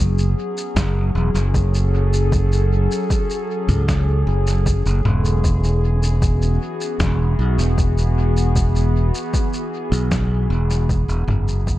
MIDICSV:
0, 0, Header, 1, 4, 480
1, 0, Start_track
1, 0, Tempo, 779221
1, 1430, Time_signature, 4, 2, 24, 8
1, 7262, End_track
2, 0, Start_track
2, 0, Title_t, "Ambient pad"
2, 0, Program_c, 0, 92
2, 0, Note_on_c, 0, 54, 86
2, 0, Note_on_c, 0, 59, 76
2, 0, Note_on_c, 0, 61, 73
2, 0, Note_on_c, 0, 66, 80
2, 0, Note_on_c, 0, 68, 81
2, 692, Note_off_c, 0, 59, 0
2, 792, Note_on_c, 0, 69, 80
2, 1048, Note_off_c, 0, 66, 0
2, 3350, Note_off_c, 0, 54, 0
2, 3351, Note_off_c, 0, 69, 0
2, 3355, Note_on_c, 0, 52, 71
2, 3599, Note_on_c, 0, 59, 85
2, 3625, Note_on_c, 0, 66, 70
2, 4632, Note_off_c, 0, 61, 0
2, 7189, Note_on_c, 0, 54, 84
2, 7192, Note_off_c, 0, 52, 0
2, 7262, Note_off_c, 0, 54, 0
2, 7262, Note_off_c, 0, 59, 0
2, 7262, Note_off_c, 0, 66, 0
2, 7262, Note_off_c, 0, 68, 0
2, 7262, End_track
3, 0, Start_track
3, 0, Title_t, "Fingered electric bass"
3, 0, Program_c, 1, 33
3, 0, Note_on_c, 1, 30, 96
3, 207, Note_off_c, 1, 30, 0
3, 470, Note_on_c, 1, 30, 102
3, 682, Note_off_c, 1, 30, 0
3, 709, Note_on_c, 1, 28, 89
3, 816, Note_off_c, 1, 28, 0
3, 829, Note_on_c, 1, 30, 87
3, 1767, Note_off_c, 1, 30, 0
3, 2271, Note_on_c, 1, 37, 100
3, 2607, Note_off_c, 1, 37, 0
3, 2630, Note_on_c, 1, 30, 92
3, 2968, Note_off_c, 1, 30, 0
3, 2994, Note_on_c, 1, 30, 83
3, 3097, Note_off_c, 1, 30, 0
3, 3113, Note_on_c, 1, 28, 95
3, 4049, Note_off_c, 1, 28, 0
3, 4312, Note_on_c, 1, 28, 99
3, 4522, Note_off_c, 1, 28, 0
3, 4551, Note_on_c, 1, 35, 85
3, 4657, Note_off_c, 1, 35, 0
3, 4672, Note_on_c, 1, 28, 87
3, 5608, Note_off_c, 1, 28, 0
3, 6109, Note_on_c, 1, 35, 96
3, 6447, Note_off_c, 1, 35, 0
3, 6469, Note_on_c, 1, 28, 94
3, 6807, Note_off_c, 1, 28, 0
3, 6828, Note_on_c, 1, 28, 84
3, 6935, Note_off_c, 1, 28, 0
3, 6946, Note_on_c, 1, 30, 96
3, 7262, Note_off_c, 1, 30, 0
3, 7262, End_track
4, 0, Start_track
4, 0, Title_t, "Drums"
4, 112, Note_on_c, 9, 82, 30
4, 174, Note_off_c, 9, 82, 0
4, 354, Note_on_c, 9, 82, 43
4, 415, Note_off_c, 9, 82, 0
4, 470, Note_on_c, 9, 36, 108
4, 473, Note_on_c, 9, 38, 98
4, 473, Note_on_c, 9, 82, 54
4, 532, Note_off_c, 9, 36, 0
4, 534, Note_off_c, 9, 38, 0
4, 534, Note_off_c, 9, 82, 0
4, 833, Note_on_c, 9, 82, 44
4, 895, Note_off_c, 9, 82, 0
4, 951, Note_on_c, 9, 36, 110
4, 953, Note_on_c, 9, 82, 58
4, 1012, Note_off_c, 9, 36, 0
4, 1014, Note_off_c, 9, 82, 0
4, 1074, Note_on_c, 9, 82, 31
4, 1135, Note_off_c, 9, 82, 0
4, 1313, Note_on_c, 9, 82, 43
4, 1375, Note_off_c, 9, 82, 0
4, 1431, Note_on_c, 9, 36, 108
4, 1432, Note_on_c, 9, 82, 52
4, 1492, Note_off_c, 9, 36, 0
4, 1493, Note_off_c, 9, 82, 0
4, 1553, Note_on_c, 9, 82, 28
4, 1615, Note_off_c, 9, 82, 0
4, 1795, Note_on_c, 9, 82, 41
4, 1857, Note_off_c, 9, 82, 0
4, 1911, Note_on_c, 9, 36, 110
4, 1912, Note_on_c, 9, 82, 52
4, 1973, Note_off_c, 9, 36, 0
4, 1974, Note_off_c, 9, 82, 0
4, 2034, Note_on_c, 9, 82, 30
4, 2096, Note_off_c, 9, 82, 0
4, 2273, Note_on_c, 9, 64, 57
4, 2273, Note_on_c, 9, 82, 40
4, 2335, Note_off_c, 9, 64, 0
4, 2335, Note_off_c, 9, 82, 0
4, 2392, Note_on_c, 9, 36, 110
4, 2394, Note_on_c, 9, 38, 96
4, 2394, Note_on_c, 9, 82, 51
4, 2453, Note_off_c, 9, 36, 0
4, 2456, Note_off_c, 9, 38, 0
4, 2456, Note_off_c, 9, 82, 0
4, 2752, Note_on_c, 9, 82, 42
4, 2814, Note_off_c, 9, 82, 0
4, 2872, Note_on_c, 9, 36, 110
4, 2872, Note_on_c, 9, 82, 55
4, 2934, Note_off_c, 9, 36, 0
4, 2934, Note_off_c, 9, 82, 0
4, 2994, Note_on_c, 9, 82, 29
4, 3055, Note_off_c, 9, 82, 0
4, 3112, Note_on_c, 9, 64, 76
4, 3174, Note_off_c, 9, 64, 0
4, 3233, Note_on_c, 9, 82, 41
4, 3295, Note_off_c, 9, 82, 0
4, 3352, Note_on_c, 9, 36, 101
4, 3352, Note_on_c, 9, 82, 51
4, 3414, Note_off_c, 9, 36, 0
4, 3414, Note_off_c, 9, 82, 0
4, 3474, Note_on_c, 9, 82, 27
4, 3536, Note_off_c, 9, 82, 0
4, 3714, Note_on_c, 9, 82, 40
4, 3776, Note_off_c, 9, 82, 0
4, 3832, Note_on_c, 9, 36, 108
4, 3832, Note_on_c, 9, 82, 50
4, 3894, Note_off_c, 9, 36, 0
4, 3894, Note_off_c, 9, 82, 0
4, 3954, Note_on_c, 9, 82, 28
4, 4015, Note_off_c, 9, 82, 0
4, 4193, Note_on_c, 9, 82, 39
4, 4255, Note_off_c, 9, 82, 0
4, 4312, Note_on_c, 9, 36, 110
4, 4313, Note_on_c, 9, 38, 94
4, 4313, Note_on_c, 9, 82, 48
4, 4374, Note_off_c, 9, 36, 0
4, 4374, Note_off_c, 9, 38, 0
4, 4374, Note_off_c, 9, 82, 0
4, 4675, Note_on_c, 9, 82, 39
4, 4737, Note_off_c, 9, 82, 0
4, 4792, Note_on_c, 9, 36, 104
4, 4793, Note_on_c, 9, 82, 52
4, 4854, Note_off_c, 9, 36, 0
4, 4855, Note_off_c, 9, 82, 0
4, 4915, Note_on_c, 9, 82, 29
4, 4977, Note_off_c, 9, 82, 0
4, 5155, Note_on_c, 9, 82, 40
4, 5217, Note_off_c, 9, 82, 0
4, 5272, Note_on_c, 9, 36, 99
4, 5273, Note_on_c, 9, 82, 53
4, 5334, Note_off_c, 9, 36, 0
4, 5334, Note_off_c, 9, 82, 0
4, 5393, Note_on_c, 9, 82, 26
4, 5455, Note_off_c, 9, 82, 0
4, 5633, Note_on_c, 9, 82, 38
4, 5695, Note_off_c, 9, 82, 0
4, 5751, Note_on_c, 9, 36, 105
4, 5752, Note_on_c, 9, 82, 50
4, 5813, Note_off_c, 9, 36, 0
4, 5813, Note_off_c, 9, 82, 0
4, 5872, Note_on_c, 9, 82, 27
4, 5934, Note_off_c, 9, 82, 0
4, 6113, Note_on_c, 9, 82, 41
4, 6175, Note_off_c, 9, 82, 0
4, 6230, Note_on_c, 9, 36, 107
4, 6232, Note_on_c, 9, 38, 89
4, 6232, Note_on_c, 9, 82, 49
4, 6292, Note_off_c, 9, 36, 0
4, 6293, Note_off_c, 9, 38, 0
4, 6293, Note_off_c, 9, 82, 0
4, 6594, Note_on_c, 9, 82, 41
4, 6655, Note_off_c, 9, 82, 0
4, 6711, Note_on_c, 9, 36, 103
4, 6713, Note_on_c, 9, 82, 53
4, 6772, Note_off_c, 9, 36, 0
4, 6774, Note_off_c, 9, 82, 0
4, 6831, Note_on_c, 9, 82, 30
4, 6893, Note_off_c, 9, 82, 0
4, 6951, Note_on_c, 9, 64, 83
4, 7012, Note_off_c, 9, 64, 0
4, 7071, Note_on_c, 9, 82, 41
4, 7132, Note_off_c, 9, 82, 0
4, 7190, Note_on_c, 9, 36, 100
4, 7192, Note_on_c, 9, 82, 54
4, 7251, Note_off_c, 9, 36, 0
4, 7253, Note_off_c, 9, 82, 0
4, 7262, End_track
0, 0, End_of_file